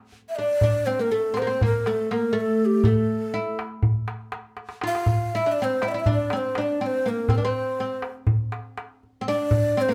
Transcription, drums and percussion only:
0.12 darbuka ka soft
0.61 darbuka dum medium
1.37 darbuka tek medium
1.61 darbuka dum medium
1.86 darbuka tek medium
2.11 darbuka tek medium
2.35 darbuka ka soft
2.61 darbuka ka soft
2.84 darbuka dum medium
2.96 darbuka ka soft
3.09 darbuka ka soft
3.34 darbuka ka soft
3.59 darbuka tek medium
3.83 darbuka dum medium
4.08 darbuka tek medium
4.32 darbuka tek medium
4.57 darbuka tek soft
4.69 darbuka ka medium
4.81 darbuka tek medium
4.95 darbuka ka medium
5.06 darbuka dum medium
5.82 darbuka tek medium
6.06 darbuka dum medium
6.30 darbuka tek medium
6.55 darbuka tek medium
6.80 darbuka ka soft
7.05 darbuka ka soft
7.29 darbuka dum medium
8.02 darbuka tek medium
8.27 darbuka dum medium
8.52 darbuka tek medium
8.78 darbuka tek medium
9.03 darbuka ka soft
9.27 darbuka ka soft
9.51 darbuka dum medium

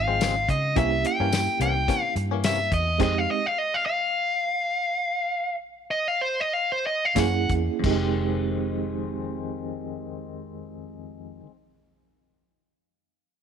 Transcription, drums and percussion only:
0.21 snare loud
0.21 closed hi-hat medium
0.21 tambourine loud
0.49 kick medium
0.49 closed hi-hat medium
0.76 kick loud
0.76 closed hi-hat medium
1.04 closed hi-hat medium
1.33 snare loud
1.33 closed hi-hat medium
1.33 tambourine loud
1.61 closed hi-hat medium
1.88 kick medium
1.88 closed hi-hat medium
2.16 closed hi-hat medium
2.44 snare loud
2.44 closed hi-hat medium
2.44 tambourine loud
2.72 kick medium
2.72 closed hi-hat medium
3.00 kick loud
3.00 closed hi-hat medium
3.00 crash medium
7.16 kick medium
7.16 snare loud
7.16 closed hi-hat medium
7.16 tambourine loud
7.49 kick medium
7.49 closed hi-hat medium
7.84 kick loud
7.84 crash medium

